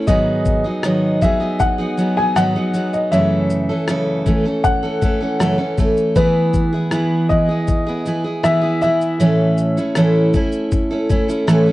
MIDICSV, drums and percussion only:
0, 0, Header, 1, 2, 480
1, 0, Start_track
1, 0, Key_signature, 4, "major"
1, 0, Tempo, 760456
1, 48, Time_signature, 4, 2, 24, 8
1, 7400, End_track
2, 0, Start_track
2, 0, Title_t, "Drums"
2, 46, Note_on_c, 9, 82, 67
2, 48, Note_on_c, 9, 36, 102
2, 109, Note_off_c, 9, 82, 0
2, 112, Note_off_c, 9, 36, 0
2, 285, Note_on_c, 9, 82, 57
2, 289, Note_on_c, 9, 36, 92
2, 349, Note_off_c, 9, 82, 0
2, 352, Note_off_c, 9, 36, 0
2, 526, Note_on_c, 9, 37, 116
2, 527, Note_on_c, 9, 82, 71
2, 589, Note_off_c, 9, 37, 0
2, 590, Note_off_c, 9, 82, 0
2, 770, Note_on_c, 9, 82, 53
2, 771, Note_on_c, 9, 36, 96
2, 833, Note_off_c, 9, 82, 0
2, 834, Note_off_c, 9, 36, 0
2, 1008, Note_on_c, 9, 82, 73
2, 1011, Note_on_c, 9, 36, 86
2, 1071, Note_off_c, 9, 82, 0
2, 1074, Note_off_c, 9, 36, 0
2, 1250, Note_on_c, 9, 82, 53
2, 1313, Note_off_c, 9, 82, 0
2, 1490, Note_on_c, 9, 37, 104
2, 1494, Note_on_c, 9, 82, 76
2, 1554, Note_off_c, 9, 37, 0
2, 1557, Note_off_c, 9, 82, 0
2, 1729, Note_on_c, 9, 82, 54
2, 1792, Note_off_c, 9, 82, 0
2, 1852, Note_on_c, 9, 82, 43
2, 1915, Note_off_c, 9, 82, 0
2, 1972, Note_on_c, 9, 82, 63
2, 2035, Note_off_c, 9, 82, 0
2, 2208, Note_on_c, 9, 82, 55
2, 2272, Note_off_c, 9, 82, 0
2, 2447, Note_on_c, 9, 37, 108
2, 2448, Note_on_c, 9, 82, 72
2, 2510, Note_off_c, 9, 37, 0
2, 2511, Note_off_c, 9, 82, 0
2, 2688, Note_on_c, 9, 82, 51
2, 2691, Note_on_c, 9, 36, 87
2, 2752, Note_off_c, 9, 82, 0
2, 2754, Note_off_c, 9, 36, 0
2, 2928, Note_on_c, 9, 82, 73
2, 2930, Note_on_c, 9, 36, 84
2, 2992, Note_off_c, 9, 82, 0
2, 2993, Note_off_c, 9, 36, 0
2, 3167, Note_on_c, 9, 82, 50
2, 3170, Note_on_c, 9, 36, 89
2, 3230, Note_off_c, 9, 82, 0
2, 3233, Note_off_c, 9, 36, 0
2, 3410, Note_on_c, 9, 37, 108
2, 3413, Note_on_c, 9, 82, 78
2, 3473, Note_off_c, 9, 37, 0
2, 3477, Note_off_c, 9, 82, 0
2, 3646, Note_on_c, 9, 82, 52
2, 3648, Note_on_c, 9, 36, 99
2, 3709, Note_off_c, 9, 82, 0
2, 3711, Note_off_c, 9, 36, 0
2, 3769, Note_on_c, 9, 82, 44
2, 3832, Note_off_c, 9, 82, 0
2, 3886, Note_on_c, 9, 82, 63
2, 3888, Note_on_c, 9, 36, 106
2, 3949, Note_off_c, 9, 82, 0
2, 3951, Note_off_c, 9, 36, 0
2, 4125, Note_on_c, 9, 82, 54
2, 4128, Note_on_c, 9, 36, 88
2, 4188, Note_off_c, 9, 82, 0
2, 4191, Note_off_c, 9, 36, 0
2, 4363, Note_on_c, 9, 37, 107
2, 4364, Note_on_c, 9, 82, 72
2, 4426, Note_off_c, 9, 37, 0
2, 4427, Note_off_c, 9, 82, 0
2, 4605, Note_on_c, 9, 82, 50
2, 4609, Note_on_c, 9, 36, 93
2, 4669, Note_off_c, 9, 82, 0
2, 4672, Note_off_c, 9, 36, 0
2, 4844, Note_on_c, 9, 82, 75
2, 4849, Note_on_c, 9, 36, 93
2, 4907, Note_off_c, 9, 82, 0
2, 4912, Note_off_c, 9, 36, 0
2, 5086, Note_on_c, 9, 82, 47
2, 5149, Note_off_c, 9, 82, 0
2, 5328, Note_on_c, 9, 37, 107
2, 5331, Note_on_c, 9, 82, 77
2, 5391, Note_off_c, 9, 37, 0
2, 5394, Note_off_c, 9, 82, 0
2, 5567, Note_on_c, 9, 82, 51
2, 5630, Note_off_c, 9, 82, 0
2, 5688, Note_on_c, 9, 82, 45
2, 5751, Note_off_c, 9, 82, 0
2, 5808, Note_on_c, 9, 82, 69
2, 5871, Note_off_c, 9, 82, 0
2, 6044, Note_on_c, 9, 82, 57
2, 6107, Note_off_c, 9, 82, 0
2, 6170, Note_on_c, 9, 82, 51
2, 6233, Note_off_c, 9, 82, 0
2, 6283, Note_on_c, 9, 37, 107
2, 6284, Note_on_c, 9, 82, 74
2, 6346, Note_off_c, 9, 37, 0
2, 6347, Note_off_c, 9, 82, 0
2, 6524, Note_on_c, 9, 82, 47
2, 6527, Note_on_c, 9, 36, 88
2, 6587, Note_off_c, 9, 82, 0
2, 6590, Note_off_c, 9, 36, 0
2, 6641, Note_on_c, 9, 82, 48
2, 6705, Note_off_c, 9, 82, 0
2, 6763, Note_on_c, 9, 82, 75
2, 6767, Note_on_c, 9, 36, 84
2, 6826, Note_off_c, 9, 82, 0
2, 6830, Note_off_c, 9, 36, 0
2, 7003, Note_on_c, 9, 82, 52
2, 7007, Note_on_c, 9, 36, 94
2, 7066, Note_off_c, 9, 82, 0
2, 7070, Note_off_c, 9, 36, 0
2, 7127, Note_on_c, 9, 82, 54
2, 7190, Note_off_c, 9, 82, 0
2, 7246, Note_on_c, 9, 37, 108
2, 7250, Note_on_c, 9, 82, 79
2, 7309, Note_off_c, 9, 37, 0
2, 7313, Note_off_c, 9, 82, 0
2, 7400, End_track
0, 0, End_of_file